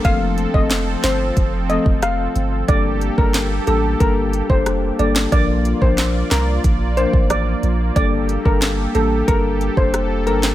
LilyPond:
<<
  \new Staff \with { instrumentName = "Steel pan" } { \time 4/4 \key g \minor \tempo 4 = 91 f''16 r8 ees''16 r8 c''16 r8. ees''16 r16 f''8. r16 | d''16 r8 bes'16 r8 a'16 r16 bes'16 r8 c''16 r8 d''16 r16 | d''16 r8 c''16 r8 bes'16 r8. c''16 r16 d''8. r16 | d''16 r8 bes'16 r8 a'16 r16 bes'16 r8 c''16 r8 bes'16 r16 | }
  \new Staff \with { instrumentName = "Analog synth pad" } { \time 4/4 \key g \minor << { <c' a'>1 | <g' a'>1 | <f' d''>1 | <g' a'>1 | } \\ { f1 | bes1~ | bes1~ | bes1 | } >> }
  \new Staff \with { instrumentName = "Marimba" } { \time 4/4 \key g \minor <f a c' a'>8. <f a c' a'>16 r4. <f a c' a'>16 r4 r16 | <g bes d' a'>8. <g bes d' a'>16 r8 <g bes d' a'>16 r16 <g bes d' a'>16 r8 <g bes d' a'>16 r8 <g bes d' a'>16 r16 | <f bes d' bes'>8. <f bes d' bes'>16 r4. <f bes d' bes'>16 r4 r16 | <g bes d' a'>8. <g bes d' a'>16 r8 <g bes d' a'>16 r16 <g bes d' a'>16 r8 <g bes d' a'>16 r8 <g bes d' a'>16 r16 | }
  \new Staff \with { instrumentName = "Sub bass" } { \clef bass \time 4/4 \key g \minor f,,8. f,,8. g,,8 f,,8. f,,8. g,,8 | g,,8. g,,8. a,,8 g,,8. f,,8. g,,8 | bes,,8. bes,,8. c,8 bes,,8. a,,8. bes,,8 | g,,8. g,,8. a,,8 g,,8. f,,8. g,,8 | }
  \new DrumStaff \with { instrumentName = "Drums" } \drummode { \time 4/4 <hh bd>8 hh16 bd16 <hc hh sn>8 <hc hh sn>8 <hh bd>8 hh16 bd16 <hh ss>8 hh8 | <hh bd>8 hh16 bd16 <hc hh sn>8 hh8 <hh bd>8 hh16 bd16 <hh ss>8 hh16 <hc sn>16 | <hh bd>8 hh16 bd16 <hc hh sn>8 <hc hh sn>8 <hh bd>8 hh16 bd16 <hh ss>8 hh8 | <hh bd>8 hh16 bd16 <hc hh sn>8 hh8 <hh bd>8 hh16 bd16 <hh ss>8 hh16 <hc sn>16 | }
>>